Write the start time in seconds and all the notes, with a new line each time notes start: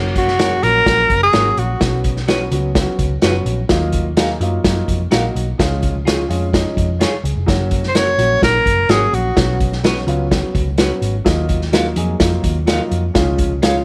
Already playing: F#1 F#3 A#3 C#4 F#4
0.16 F#4, kick, closed hi-hat
0.28 snare
0.39 F#3 A#3 C#4 F#4 G#4 A#4 C#5, snare, closed hi-hat
0.62 A#1 F#3 A#3 C#4 F#4 A#4, closed hi-hat
0.86 A#1 F#3 A#3 C#4 F#4, kick, snare, closed hi-hat
1.10 F#1, kick, closed hi-hat
1.23 G#4
1.32 G#1 F#3 A#3 C#4 F4 F#4 A#4 C#5, snare, closed hi-hat
1.41 F#4
1.57 A#1 F#4, closed hi-hat
1.80 B1 F#3 B3 C#4 F#4, kick, snare, closed hi-hat
2.04 kick, closed hi-hat
2.16 snare
2.27 F#3 B3 C#4 F#4 B4 C#5, snare, closed hi-hat
2.51 C#2 F#3 B3 C#4 F#4, closed hi-hat
2.75 F#3 B3 C#4 F4, kick, snare, closed hi-hat
2.82 F#4
2.99 C#2, kick, closed hi-hat
3.22 F#1 F#3 B3 C#4 F4 F#4 B4 C#5, snare, closed hi-hat
3.30 F#4
3.45 A#1, closed hi-hat
3.69 D#2 F#3 A#3 D#4 F4, kick, snare, closed hi-hat
3.92 kick, closed hi-hat
4.16 F#3 A#3 D#4 F#4 G#4 A#4 F5, snare, closed hi-hat
4.40 F#2 F#3 A#3 D#4 F4, closed hi-hat
4.64 F#2 F#3 A#3 D#4 F4, kick, snare, closed hi-hat
4.88 F2, kick, closed hi-hat
5.11 A#1 F#3 A#3 D#4 F#4 A#4 F5, snare, closed hi-hat
5.35 B1, closed hi-hat
5.58 C#2 F3 G#3 C#4 F4, kick, snare, closed hi-hat
5.83 kick, closed hi-hat
6.05 F3 G#3 C#4 F4 G#4 C#5, snare, closed hi-hat
6.28 F2 F3 G#3 C#4 F4, closed hi-hat
6.52 F3 G#3 C#4 D#4, kick, snare, closed hi-hat
6.76 F2 D#5, kick, closed hi-hat
6.99 F4 G#4 C#5, snare, closed hi-hat
7.24 C#2 G#4, closed hi-hat
7.36 F1
7.46 F#1 F#3 A#3 C#4 F#4, kick, snare, closed hi-hat
7.71 kick, closed hi-hat
7.83 snare
7.88 C5
7.95 F#3 A#3 C#4 F#4 A#4 C#5, snare, closed hi-hat
8.18 A#1 F#3 A#3 C#4 F#4, closed hi-hat
8.41 A#1 F#3 A#3 C#4 F#4 A#4, kick, snare, closed hi-hat
8.66 F#1, kick, closed hi-hat
8.89 G#1 F#3 A#3 C#4 F#4 G#4 A#4 C#5, snare, closed hi-hat
9.13 A#1 F#4, closed hi-hat
9.36 B1 F#3 B3 C#4 F#4, kick, snare, closed hi-hat
9.60 kick, closed hi-hat
9.72 snare
9.83 F#3 B3 C#4 F#4 B4 C#5, snare, closed hi-hat
10.07 C#2 F#3 B3 C#4 F4, closed hi-hat
10.31 F#3 B3 C#4 F#4, kick, snare, closed hi-hat
10.55 C#2, kick, closed hi-hat
10.78 F#3 B3 C#4 F#4 B4 C#5, snare, closed hi-hat
11.01 G#1, closed hi-hat
11.24 D#2 F#3 A#3 D#4 F4, kick, snare, closed hi-hat
11.49 kick, closed hi-hat
11.61 snare
11.72 F#3 A#3 D#4 F4 F#4 A#4 F5, snare, closed hi-hat
11.96 F2 F#3 A#3 D#4 G#4, closed hi-hat
12.19 F2 F3 A#3 D#4 F4, kick, snare, closed hi-hat
12.25 F#3
12.44 D#2, kick, closed hi-hat
12.66 F#3 A#3 D#4 F4 F#4 A#4 F5, snare, closed hi-hat
12.91 F2, closed hi-hat
13.14 C#2 F3 G#3 C#4 F4, kick, snare, closed hi-hat
13.38 kick, closed hi-hat
13.62 F3 G#3 C#4 F4 G#4 C#5 F5, snare, closed hi-hat